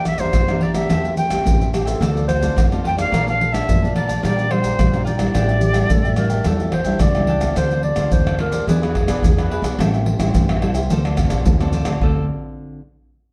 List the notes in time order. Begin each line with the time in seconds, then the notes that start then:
Already playing: E2 E3 A#3 D4 G4
0.05 E5, muted cavaquinho stroke, pandeiro, tamborim, maracas, surdo
0.18 A#3 D4 G4 A#4 C5 D5 E5, pandeiro, maracas, surdo
0.33 E3, muted cavaquinho stroke, pandeiro, tamborim, maracas, surdo
0.48 A#3 D4 G4 A#4 D5 E5, pandeiro, tamborim, maracas
0.61 G4 A#4 D5 E5, pandeiro
0.75 A3 C4 G4 A#4 D5 E5, pandeiro, tamborim, maracas, surdo
0.90 E2 E3 A4 C5 E5 G5, pandeiro, tamborim, maracas, surdo
1.05 C5 E5 G5, pandeiro, maracas
1.17 G5, pandeiro, maracas
1.30 A3 C4 G4 C5 E5 G5, pandeiro, tamborim, maracas, surdo
1.45 A1 E3, pandeiro, maracas, surdo
1.60 C5 E5 G5, pandeiro, maracas
1.72 A3 C4 G4 A4 C5 E5 G5, pandeiro, tamborim, maracas
1.85 A4 C5 E5 G5, pandeiro, maracas, surdo
2.01 D2 D3 A3 C4 F4 A4 C5 D5, pandeiro, tamborim, maracas, surdo
2.17 A4 C5 D5, pandeiro, maracas
2.28 C5, muted cavaquinho stroke, pandeiro, tamborim, maracas, surdo
2.42 A3 C4 F4 A4 C5 D5, pandeiro, maracas, surdo
2.56 F2 A2, muted cavaquinho stroke, pandeiro, tamborim, maracas, surdo
2.71 A3 C4 F4 A4 C5 D5, pandeiro, tamborim, maracas
2.84 F4 A4 C5 D5 G5, pandeiro
2.97 A3 D4 F4 A4 C5 D5 F5, pandeiro, tamborim, maracas, surdo
3.11 A#1 A#2 A#4 D5 F5 A5, pandeiro, tamborim, maracas, surdo
3.26 D5 F5 A5, pandeiro, maracas
3.41 pandeiro
3.52 A3 D4 F4 D5 E5 F5 A5, pandeiro, tamborim, maracas, surdo
3.68 A#2 F3, pandeiro, maracas, surdo
3.82 A3 D4 F4 D5 F5 A5, pandeiro, maracas
3.95 A#4 D5 F5 A5, pandeiro, tamborim
4.08 D5 F5 A5, pandeiro, maracas, surdo
4.22 A#1 A#2 G3 D4 F4 A#4 D5 G5, pandeiro, tamborim, maracas, surdo
4.36 A#4 D5 G5, pandeiro, maracas
4.49 G3 D4 F4 C5, muted cavaquinho stroke, pandeiro, tamborim
4.62 A#4 D5 G5, pandeiro, maracas, surdo
4.78 A#1 A#2 G3 D4 F4, muted cavaquinho stroke, pandeiro, tamborim, maracas, surdo
4.92 A#4 D5 G5, pandeiro, tamborim, maracas
5.04 F4 A#4 D5 G5, pandeiro, maracas
5.17 G3 D4 E4 A#4 D5 G5, pandeiro, tamborim, maracas, surdo
5.34 A1 A2 D4 A4 E5 G5, pandeiro, tamborim, maracas, surdo
5.49 A4 E5 G5, pandeiro, maracas
5.61 G4, pandeiro, maracas
5.73 G3 D4 E4 A4 E5 G5, pandeiro, tamborim, maracas, surdo
5.90 A2 E3 A4, pandeiro, maracas, surdo
6.05 A4 E5 G5, pandeiro, maracas
6.16 G3 D4 E4 A4 A#4 E5 G5, pandeiro, tamborim, maracas
6.30 A4 E5 G5, pandeiro, maracas, surdo
6.44 E2 A2 G3 D4 E4 A4 E5 G5, pandeiro, tamborim, maracas, surdo
6.60 A4 E5 G5, pandeiro, maracas
6.72 C5, muted cavaquinho stroke, pandeiro, tamborim, surdo
6.85 G3 D4 E4 A4 E5 G5, pandeiro, maracas, surdo
6.99 C#2 E3 D5, muted cavaquinho stroke, pandeiro, tamborim, maracas, surdo
7.15 G3 D4 E4 A4 E5 G5, pandeiro, tamborim, maracas
7.27 D4 A4 E5 G5, pandeiro
7.41 A3 C4 F4 A4 E5 G5, pandeiro, tamborim, maracas, surdo
7.56 D2 D3 F4 A4 C5 D5, pandeiro, tamborim, maracas, surdo
7.71 A4 C5 D5, pandeiro, maracas
7.83 D5, pandeiro
7.96 D2 A3 C4 F4 A4 C5 D5, pandeiro, tamborim, maracas
8.11 D2 A2 C5, pandeiro, maracas, surdo
8.27 A4 C5 D5, pandeiro, tamborim, maracas
8.39 A3 C4 F4 A4 A#4 C5 D5, pandeiro, tamborim
8.52 D#2 A4 C5 D5, pandeiro, maracas
8.67 E2 E3 B3 D4 E4 G#4 B4 D5, pandeiro, maracas, surdo
8.81 G#4 B4 D5, pandeiro, tamborim, maracas
8.95 muted cavaquinho stroke, pandeiro, tamborim, surdo
9.07 B1 B3 D4 G#4 B4 D5, pandeiro, tamborim, maracas
9.22 E2 B2, muted cavaquinho stroke, pandeiro, maracas, surdo
9.37 G#4 B4 D5, pandeiro, tamborim, maracas
9.50 B3 D4 E4 G#4 B4 D5, pandeiro
9.62 B1 G#4 B4 D5, pandeiro, tamborim, maracas
9.79 A1 A2 G3 C4 E4 A4 C5 E5 G5, pandeiro, tamborim, maracas, surdo
9.94 C5 E5 G5, pandeiro, maracas
10.06 pandeiro
10.19 A1 G3 C4 E4 C5 E5 G5, pandeiro, tamborim, maracas
10.34 A1 E3, pandeiro, maracas, surdo
10.49 C5 E5 G5, pandeiro, tamborim, maracas
10.61 G3 C4 E4 A4 C5 E5 G5, pandeiro, tamborim
10.74 C2 C5 E5 G5, pandeiro, maracas
10.90 D2 D3 C4 F4 A4 C5 D5, pandeiro, maracas, surdo
11.04 A4 C5 D5, pandeiro, tamborim, maracas
11.17 C4 F4 A4, pandeiro, tamborim, maracas, surdo
11.29 A1 A4 C5 D5, pandeiro, tamborim, maracas
11.45 D2 A2 C4 F4 A4, muted cavaquinho stroke, pandeiro, maracas, surdo
11.60 C4 F4 A4 C5 D5, pandeiro, tamborim, maracas
11.73 F4 A4 C5 D5, pandeiro, maracas
11.85 D2 A4 C5 D5, pandeiro, tamborim, maracas
12.01 D2 D3 C4 F4 A4 C5 D5, surdo